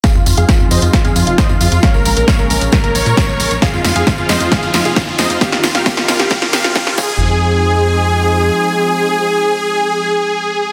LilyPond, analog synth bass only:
\new Staff \with { instrumentName = "Analog synth bass" } { \clef bass \time 4/4 \key f \minor \tempo 4 = 134 r16 f,16 f,16 f,16 r16 f,16 f,16 f,16 r16 f,16 f,16 f,,16 r16 f,16 f,16 f,16 | r16 bes,,16 bes,,16 bes,,16 r16 bes,,16 bes,,16 bes,,16 r16 bes,,16 bes,,16 bes,16 r16 bes,,16 bes,,16 bes,,16 | r16 f,16 f,16 f,16 r16 f,16 f,16 f,16 r16 f,16 f,16 f,,16 r16 f,16 f,16 f,16 | r16 ees,16 ees,16 ees,16 r16 ees,16 ees,16 ees,16 r16 ees,16 ees,16 ees,16 r16 ees,16 f,8~ |
f,2. r4 | r1 | }